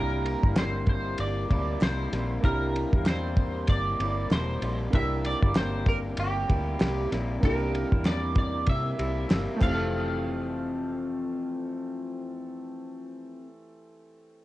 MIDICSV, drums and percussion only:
0, 0, Header, 1, 2, 480
1, 0, Start_track
1, 0, Key_signature, -1, "major"
1, 0, Tempo, 624350
1, 1874, Time_signature, 4, 2, 24, 8
1, 11108, End_track
2, 0, Start_track
2, 0, Title_t, "Drums"
2, 197, Note_on_c, 9, 51, 67
2, 273, Note_off_c, 9, 51, 0
2, 333, Note_on_c, 9, 36, 106
2, 410, Note_off_c, 9, 36, 0
2, 429, Note_on_c, 9, 51, 69
2, 432, Note_on_c, 9, 38, 112
2, 434, Note_on_c, 9, 39, 86
2, 506, Note_off_c, 9, 51, 0
2, 509, Note_off_c, 9, 38, 0
2, 511, Note_off_c, 9, 39, 0
2, 665, Note_on_c, 9, 51, 58
2, 669, Note_on_c, 9, 36, 109
2, 742, Note_off_c, 9, 51, 0
2, 746, Note_off_c, 9, 36, 0
2, 906, Note_on_c, 9, 51, 81
2, 983, Note_off_c, 9, 51, 0
2, 1158, Note_on_c, 9, 36, 78
2, 1158, Note_on_c, 9, 51, 80
2, 1235, Note_off_c, 9, 36, 0
2, 1235, Note_off_c, 9, 51, 0
2, 1393, Note_on_c, 9, 39, 74
2, 1400, Note_on_c, 9, 38, 120
2, 1405, Note_on_c, 9, 51, 87
2, 1470, Note_off_c, 9, 39, 0
2, 1477, Note_off_c, 9, 38, 0
2, 1482, Note_off_c, 9, 51, 0
2, 1635, Note_on_c, 9, 38, 38
2, 1637, Note_on_c, 9, 51, 74
2, 1712, Note_off_c, 9, 38, 0
2, 1713, Note_off_c, 9, 51, 0
2, 1874, Note_on_c, 9, 36, 114
2, 1874, Note_on_c, 9, 51, 75
2, 1951, Note_off_c, 9, 36, 0
2, 1951, Note_off_c, 9, 51, 0
2, 2120, Note_on_c, 9, 51, 61
2, 2197, Note_off_c, 9, 51, 0
2, 2252, Note_on_c, 9, 36, 103
2, 2329, Note_off_c, 9, 36, 0
2, 2351, Note_on_c, 9, 51, 69
2, 2352, Note_on_c, 9, 39, 87
2, 2354, Note_on_c, 9, 38, 114
2, 2428, Note_off_c, 9, 51, 0
2, 2429, Note_off_c, 9, 39, 0
2, 2431, Note_off_c, 9, 38, 0
2, 2587, Note_on_c, 9, 51, 60
2, 2589, Note_on_c, 9, 36, 104
2, 2664, Note_off_c, 9, 51, 0
2, 2666, Note_off_c, 9, 36, 0
2, 2824, Note_on_c, 9, 51, 88
2, 2833, Note_on_c, 9, 36, 102
2, 2901, Note_off_c, 9, 51, 0
2, 2909, Note_off_c, 9, 36, 0
2, 3077, Note_on_c, 9, 51, 74
2, 3154, Note_off_c, 9, 51, 0
2, 3313, Note_on_c, 9, 39, 65
2, 3317, Note_on_c, 9, 38, 117
2, 3322, Note_on_c, 9, 51, 76
2, 3390, Note_off_c, 9, 39, 0
2, 3394, Note_off_c, 9, 38, 0
2, 3399, Note_off_c, 9, 51, 0
2, 3552, Note_on_c, 9, 51, 71
2, 3629, Note_off_c, 9, 51, 0
2, 3791, Note_on_c, 9, 51, 83
2, 3793, Note_on_c, 9, 36, 100
2, 3868, Note_off_c, 9, 51, 0
2, 3870, Note_off_c, 9, 36, 0
2, 4033, Note_on_c, 9, 51, 66
2, 4110, Note_off_c, 9, 51, 0
2, 4171, Note_on_c, 9, 36, 104
2, 4248, Note_off_c, 9, 36, 0
2, 4269, Note_on_c, 9, 39, 88
2, 4269, Note_on_c, 9, 51, 78
2, 4272, Note_on_c, 9, 38, 114
2, 4346, Note_off_c, 9, 39, 0
2, 4346, Note_off_c, 9, 51, 0
2, 4349, Note_off_c, 9, 38, 0
2, 4506, Note_on_c, 9, 51, 62
2, 4508, Note_on_c, 9, 36, 101
2, 4583, Note_off_c, 9, 51, 0
2, 4585, Note_off_c, 9, 36, 0
2, 4743, Note_on_c, 9, 51, 93
2, 4820, Note_off_c, 9, 51, 0
2, 4994, Note_on_c, 9, 51, 77
2, 4995, Note_on_c, 9, 36, 85
2, 5071, Note_off_c, 9, 36, 0
2, 5071, Note_off_c, 9, 51, 0
2, 5230, Note_on_c, 9, 39, 66
2, 5234, Note_on_c, 9, 38, 115
2, 5239, Note_on_c, 9, 51, 93
2, 5307, Note_off_c, 9, 39, 0
2, 5311, Note_off_c, 9, 38, 0
2, 5316, Note_off_c, 9, 51, 0
2, 5474, Note_on_c, 9, 38, 40
2, 5475, Note_on_c, 9, 51, 73
2, 5551, Note_off_c, 9, 38, 0
2, 5552, Note_off_c, 9, 51, 0
2, 5712, Note_on_c, 9, 36, 105
2, 5712, Note_on_c, 9, 51, 88
2, 5789, Note_off_c, 9, 36, 0
2, 5789, Note_off_c, 9, 51, 0
2, 5956, Note_on_c, 9, 51, 59
2, 6033, Note_off_c, 9, 51, 0
2, 6090, Note_on_c, 9, 36, 108
2, 6167, Note_off_c, 9, 36, 0
2, 6190, Note_on_c, 9, 51, 67
2, 6191, Note_on_c, 9, 39, 82
2, 6193, Note_on_c, 9, 38, 120
2, 6267, Note_off_c, 9, 39, 0
2, 6267, Note_off_c, 9, 51, 0
2, 6270, Note_off_c, 9, 38, 0
2, 6423, Note_on_c, 9, 51, 61
2, 6427, Note_on_c, 9, 36, 110
2, 6500, Note_off_c, 9, 51, 0
2, 6503, Note_off_c, 9, 36, 0
2, 6663, Note_on_c, 9, 51, 88
2, 6670, Note_on_c, 9, 36, 88
2, 6739, Note_off_c, 9, 51, 0
2, 6747, Note_off_c, 9, 36, 0
2, 6913, Note_on_c, 9, 51, 81
2, 6990, Note_off_c, 9, 51, 0
2, 7151, Note_on_c, 9, 39, 67
2, 7155, Note_on_c, 9, 38, 120
2, 7160, Note_on_c, 9, 51, 88
2, 7228, Note_off_c, 9, 39, 0
2, 7232, Note_off_c, 9, 38, 0
2, 7237, Note_off_c, 9, 51, 0
2, 7389, Note_on_c, 9, 49, 92
2, 7390, Note_on_c, 9, 36, 114
2, 7392, Note_on_c, 9, 39, 89
2, 7466, Note_off_c, 9, 49, 0
2, 7467, Note_off_c, 9, 36, 0
2, 7469, Note_off_c, 9, 39, 0
2, 11108, End_track
0, 0, End_of_file